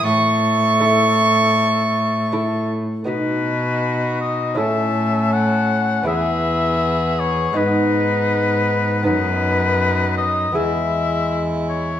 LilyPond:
<<
  \new Staff \with { instrumentName = "Oboe" } { \time 4/4 \key b \mixolydian \tempo 4 = 80 a'2.~ a'8 r8 | b'4. dis''8 e''4 fis''4 | e''4. cis''8 b'2 | b'4. dis''8 e''4. cis''8 | }
  \new Staff \with { instrumentName = "Violin" } { \time 4/4 \key b \mixolydian cis'''2.~ cis'''8 r8 | fis'2 a'2 | gis'2 dis'2 | dis'2 e'2 | }
  \new Staff \with { instrumentName = "Lute" } { \time 4/4 \key b \mixolydian r4 <a e' a'>4 r4 <a e' a'>4 | <b dis' fis'>2 <cis' e' a'>2 | <b e' gis'>2 <b dis' gis'>2 | <b dis' b'>2 <b e' gis'>2 | }
  \new Staff \with { instrumentName = "Lute" } { \clef bass \time 4/4 \key b \mixolydian a,2.~ a,8. r16 | b,2 a,2 | e,2 gis,2 | fis,2 e,2 | }
  \new Staff \with { instrumentName = "Bassoon" } { \time 4/4 \key b \mixolydian e'2.~ e'8 r8 | dis'2 cis'2 | b2 b2 | b4. r8 gis2 | }
  \new Staff \with { instrumentName = "Cello" } { \clef bass \time 4/4 \key b \mixolydian a,2.~ a,8. r16 | b,2 a,2 | e,2 gis,2 | fis,2 e,2 | }
>>